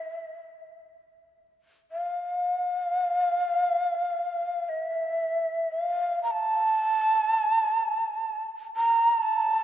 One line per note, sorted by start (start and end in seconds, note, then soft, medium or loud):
0.00 0.38 E5 medium
1.92 4.70 F5 medium
4.69 5.73 E5 medium
5.72 6.22 F5 medium
6.23 6.33 A#5 medium
6.31 8.44 A5 medium
8.77 9.24 A#5 medium
9.22 9.63 A5 medium